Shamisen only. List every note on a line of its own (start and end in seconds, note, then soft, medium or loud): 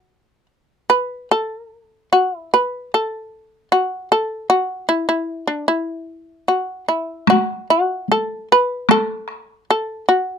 0.00 0.46 F#4 medium
0.90 1.28 B4 medium
1.31 2.09 A4 medium
2.13 2.38 F#4 medium
2.38 2.50 E4 medium
2.54 2.91 B4 medium
2.94 3.68 A4 medium
3.72 4.08 F#4 medium
4.12 4.47 A4 medium
4.50 4.86 F#4 medium
4.89 5.07 E4 medium
5.09 5.45 E4 medium
5.47 5.66 D4 medium
5.68 6.84 E4 medium
6.48 6.85 F#4 soft
6.88 7.26 E4 soft
7.30 7.67 F#4 medium
7.70 8.07 F#4 medium
8.12 8.48 A4 medium
8.52 8.87 B4 medium
8.91 9.64 A4 medium
9.70 10.05 A4 medium
10.09 10.38 F#4 medium